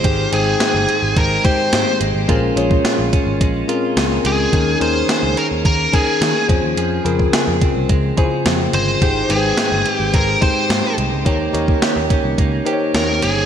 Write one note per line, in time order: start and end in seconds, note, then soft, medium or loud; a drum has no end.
0.00 0.63 G#3 medium
0.00 0.32 C4 medium
0.00 0.26 D#4 medium
0.00 0.29 C5 loud
0.04 0.25 G#1 medium
0.04 0.85 G#2 medium
0.04 2.29 D#3 medium
0.04 0.26 G4 medium
0.04 0.59 G4 medium
0.04 0.26 G#4 medium
0.04 0.26 C5 medium
0.04 kick medium
0.04 closed hi-hat medium
0.32 0.54 G#1 medium
0.32 1.18 G#3 medium
0.32 0.87 C4 medium
0.32 1.18 D#4 medium
0.32 1.20 G#4 medium
0.32 1.18 C5 medium
0.32 1.18 G5 medium
0.32 closed hi-hat medium
0.60 1.43 G4 medium
0.60 snare medium
0.60 closed hi-hat medium
0.74 0.85 G1 medium
0.88 1.71 C4 medium
0.88 closed hi-hat medium
1.03 1.13 G#1 medium
1.16 1.38 G#1 medium
1.16 2.00 G#3 medium
1.16 1.45 A#4 medium
1.16 kick medium
1.16 closed hi-hat medium
1.44 2.09 G#3 medium
1.44 2.08 D#4 medium
1.44 2.09 G4 medium
1.44 2.29 G4 medium
1.44 2.09 C5 medium
1.44 1.97 C5 medium
1.44 kick medium
1.44 closed hi-hat medium
1.73 1.83 G#2 medium
1.73 2.34 C4 medium
1.73 snare loud
1.73 closed hi-hat medium
2.01 2.11 G#1 medium
2.01 2.28 G#3 medium
2.01 closed hi-hat medium
2.15 2.25 G#1 medium
2.28 2.50 A#1 loud
2.28 3.09 A#2 medium
2.28 3.40 G#3 medium
2.28 2.50 C#4 medium
2.28 2.50 F4 medium
2.28 2.83 F4 medium
2.28 2.50 G#4 medium
2.28 2.50 A#4 medium
2.28 kick medium
2.28 closed hi-hat medium
2.56 2.78 A#1 medium
2.56 3.42 C#4 medium
2.56 3.12 C#4 medium
2.56 3.42 F4 medium
2.56 3.42 G#4 medium
2.56 3.43 C#5 medium
2.56 closed hi-hat medium
2.71 kick medium
2.85 3.68 F4 medium
2.85 snare medium
2.85 closed hi-hat medium
2.99 3.09 A#1 medium
3.13 3.96 C#4 medium
3.13 kick medium
3.13 closed hi-hat medium
3.27 3.37 G#1 medium
3.41 3.62 A#1 medium
3.41 4.24 G#3 medium
3.41 kick medium
3.41 closed hi-hat medium
3.68 3.75 C4 medium
3.68 4.33 F4 medium
3.68 4.53 F4 medium
3.68 4.33 G#4 medium
3.68 4.33 A#4 medium
3.68 closed hi-hat medium
3.74 4.36 C#4 medium
3.97 4.18 C#2 medium
3.97 4.81 C#4 medium
3.97 snare loud
3.97 closed hi-hat medium
4.25 4.46 C#2 medium
4.25 5.65 G#3 medium
4.25 4.78 G#4 medium
4.25 closed hi-hat medium
4.52 4.74 D#2 loud
4.52 5.33 D#3 medium
4.52 6.49 D#3 medium
4.52 4.74 C#4 medium
4.52 4.74 D#4 medium
4.52 4.74 G#4 medium
4.52 5.09 G#4 medium
4.52 4.75 A#4 medium
4.52 kick medium
4.52 closed hi-hat medium
4.80 5.02 D#2 medium
4.80 5.66 C#4 medium
4.80 5.37 C#4 medium
4.80 5.66 D#4 medium
4.80 5.66 G#4 medium
4.80 5.67 A#4 medium
4.80 5.38 C5 loud
4.80 closed hi-hat medium
5.09 5.93 G#4 medium
5.09 snare loud
5.09 closed hi-hat medium
5.23 5.34 C#2 medium
5.37 6.21 C#4 medium
5.37 5.46 A#4 medium
5.37 closed hi-hat medium
5.51 5.62 D#2 medium
5.65 5.86 D#2 medium
5.65 6.55 A#3 medium
5.65 5.94 A#4 medium
5.65 kick medium
5.65 closed hi-hat medium
5.92 6.47 C#4 medium
5.92 6.49 D#4 medium
5.92 6.48 G#4 medium
5.92 6.78 G#4 medium
5.92 6.46 G#4 medium
5.92 6.49 A#4 medium
5.92 kick medium
5.92 closed hi-hat medium
6.21 6.32 D#3 medium
6.21 7.05 C#4 medium
6.21 snare loud
6.21 closed hi-hat medium
6.49 6.60 F2 medium
6.49 6.76 F3 medium
6.49 6.94 C#4 medium
6.49 6.94 F4 medium
6.49 6.94 G#4 medium
6.49 6.94 C5 medium
6.49 kick loud
6.49 closed hi-hat medium
6.63 6.74 D#2 medium
6.77 6.98 F2 loud
6.77 9.01 F3 medium
6.77 7.33 G#4 medium
6.77 closed hi-hat medium
7.04 7.26 F2 medium
7.04 7.90 C#3 medium
7.04 7.61 C4 medium
7.04 7.91 F4 medium
7.04 7.91 G#4 medium
7.04 7.91 A#4 medium
7.04 closed hi-hat medium
7.19 kick medium
7.33 8.17 G#4 medium
7.33 snare loud
7.33 closed hi-hat medium
7.48 7.58 F2 medium
7.61 8.45 C4 medium
7.61 kick medium
7.61 closed hi-hat medium
7.76 7.86 C2 medium
7.89 8.11 C#2 medium
7.89 8.73 G#3 medium
7.89 kick medium
7.89 closed hi-hat medium
8.17 8.81 C#3 medium
8.17 8.24 E4 medium
8.17 9.02 G#4 medium
8.17 8.82 G#4 medium
8.17 8.82 C5 medium
8.17 kick medium
8.17 closed hi-hat medium
8.24 8.85 F4 medium
8.46 8.67 F2 medium
8.46 9.29 C4 medium
8.46 snare loud
8.46 closed hi-hat medium
8.73 8.95 G1 medium
8.73 9.60 G#3 medium
8.73 9.32 C5 loud
8.73 closed hi-hat medium
9.01 9.23 G#1 loud
9.01 9.82 G#2 medium
9.01 11.57 D#3 medium
9.01 9.23 D#4 medium
9.01 9.23 G4 medium
9.01 9.57 G4 medium
9.01 9.23 G#4 medium
9.01 9.24 C5 medium
9.01 kick medium
9.01 closed hi-hat medium
9.29 9.51 G#1 medium
9.29 10.15 G#3 medium
9.29 9.84 C4 medium
9.29 10.15 D#4 medium
9.29 9.90 G#4 medium
9.29 9.37 B4 medium
9.29 10.15 G5 medium
9.29 closed hi-hat medium
9.37 10.19 C5 medium
9.57 10.41 G4 medium
9.57 snare loud
9.57 closed hi-hat medium
9.72 9.82 G1 medium
9.85 10.69 C4 medium
9.85 closed hi-hat medium
9.90 10.17 G4 medium
10.00 10.10 G#1 medium
10.14 10.35 G#1 medium
10.14 10.97 G#3 medium
10.14 10.42 A#4 medium
10.14 kick medium
10.14 closed hi-hat medium
10.41 11.06 G#3 medium
10.41 11.06 D#4 medium
10.41 11.06 G4 medium
10.41 11.26 G4 medium
10.41 11.06 C5 medium
10.41 10.94 C5 medium
10.41 kick medium
10.41 closed hi-hat medium
10.70 10.80 G#2 medium
10.70 11.32 C4 medium
10.70 snare loud
10.70 closed hi-hat medium
10.98 11.09 C2 medium
10.98 11.26 G#3 medium
10.98 closed hi-hat medium
11.12 11.23 C#2 medium
11.25 11.47 D#2 loud
11.25 12.06 D#3 medium
11.25 12.37 A#3 medium
11.25 11.47 D#4 medium
11.25 11.47 G4 medium
11.25 11.81 G4 medium
11.25 11.47 A#4 medium
11.25 11.47 C#5 medium
11.25 kick medium
11.25 closed hi-hat medium
11.53 11.75 D#2 medium
11.53 12.09 C#4 medium
11.53 12.39 D#4 medium
11.53 12.39 G4 medium
11.53 12.39 A#4 medium
11.53 12.40 C#5 medium
11.53 closed hi-hat medium
11.68 kick medium
11.82 12.65 G4 medium
11.82 snare loud
11.82 closed hi-hat medium
11.96 12.07 D#2 medium
12.10 12.93 C#4 medium
12.10 kick medium
12.10 closed hi-hat medium
12.24 12.34 C2 medium
12.38 12.59 C#2 medium
12.38 13.21 A#3 medium
12.38 kick medium
12.38 closed hi-hat medium
12.65 13.30 D#4 medium
12.65 13.30 G4 medium
12.65 13.46 G4 medium
12.65 13.30 A#4 medium
12.65 12.73 C5 medium
12.65 closed hi-hat medium
12.73 13.34 C#5 medium
12.94 13.24 D#2 medium
12.94 13.46 C#4 medium
12.94 13.23 A#4 medium
12.94 snare loud
12.94 closed hi-hat medium
13.22 13.43 G1 medium
13.22 13.46 A#3 medium
13.22 13.46 G#4 medium
13.22 closed hi-hat medium